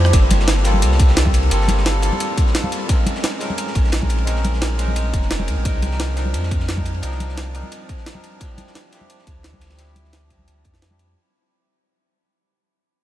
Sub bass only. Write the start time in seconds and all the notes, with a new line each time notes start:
Already playing: F2
0.13 G1
0.82 C2
1.51 G1
3.75 A#1
5.13 F1
5.48 D#2
5.57 A#1
5.65 C2
6.34 F2
7.03 C2
9.27 D2
10.48 D2
10.65 F2